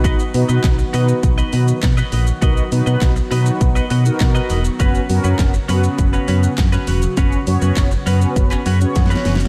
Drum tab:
HH |x-----o-----x-----o-----x-----o-----x-----o-----|x-----o-----x-----o-----x-----o-----x-----o-----|x-----o-----x-----o-----x-----o-----x-----o-----|x-----o-----x-----o-----x-----o-----x-----o-----|
SH |x--x--x--x--x--x--x--x--x--x--x--x--x--x--x--x--|x--x--x--x--x--x--x--x--x--x--x--x--x--x--x--x--|x--x--x--x--x--x--x--x--x--x--x--x--x--x--x--x--|x--x--x--x--x--x--x--x--x--x--x--x--x--x--x--x--|
CP |------------x-----------------------x-----------|------------x-----------------------x-----------|------------x-----------------------x-----------|------------x--------------x--------------------|
SD |------------o-----------------------o-----------|------------o-----------------------o-----------|------------o-----------------------o-----------|------------o-----------------------o-o-o-o-o---|
BD |o-----------o-----------o-----------o-----------|o-----------o-----------o-----------o-----------|o-----------o-----------o-----------o-----------|o-----------o-----------o-----------o-----------|